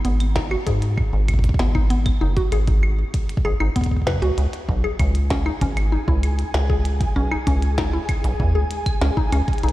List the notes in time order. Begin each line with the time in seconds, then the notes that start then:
0.05 G#1 B3, closed hi-hat
0.20 closed hi-hat, claves
0.36 D#4, kick, snare
0.51 F#4, claves
0.66 G#2 G#4, kick, closed hi-hat
0.82 closed hi-hat
0.97 kick, claves
1.13 G#1
1.28 kick, closed hi-hat, claves
1.34 kick
1.39 kick
1.44 kick, closed hi-hat
1.49 kick
1.54 kick
1.59 G#1 B3, snare
1.75 D#4, kick, claves
1.90 B3, closed hi-hat
2.06 kick, closed hi-hat, claves
2.21 F#1 D#4
2.37 F#4, kick, closed hi-hat
2.52 G#1 G#4, closed hi-hat, claves
2.67 kick, closed hi-hat
2.83 claves
3.14 kick, closed hi-hat
3.29 closed hi-hat
3.37 kick
3.45 G#1 G#4, claves
3.60 G#1 D#4, claves
3.76 B3, kick, closed hi-hat
3.81 kick, closed hi-hat
3.86 kick
3.91 kick
3.96 kick
4.02 kick
4.07 B4, kick, snare, claves
4.09 kick
4.11 kick
4.13 kick
4.16 kick
4.18 kick
4.20 C#2 F#4, kick, closed hi-hat
4.38 C#2 G#4 G#5, closed hi-hat
4.53 closed hi-hat
4.69 B1, kick
4.84 G#4, claves
4.99 C#2, kick, closed hi-hat, claves
5.15 closed hi-hat
5.30 C#4, kick, snare
5.46 D#4, claves
5.61 G#1 C#4, kick, closed hi-hat
5.77 closed hi-hat, claves
5.92 D#4
6.08 C#2 E4, kick
6.23 closed hi-hat, claves
6.39 closed hi-hat
6.54 C#2, snare
6.70 G#4, kick
6.85 closed hi-hat
7.01 kick, closed hi-hat
7.16 B1 C#4
7.31 D#4, claves
7.47 C#2 C#4, kick, closed hi-hat
7.62 closed hi-hat
7.78 D#4, kick, snare, claves
7.93 E4
8.09 kick, closed hi-hat, claves
8.24 B1, closed hi-hat
8.40 E2, kick
8.55 C#2 G#4
8.71 closed hi-hat
8.86 kick, closed hi-hat, claves
9.01 C#2 C#4, snare
9.17 D#4, kick
9.32 C#2 C#4, closed hi-hat, claves
9.48 kick, closed hi-hat
9.53 closed hi-hat
9.58 closed hi-hat
9.63 B1 D#4, closed hi-hat
9.69 closed hi-hat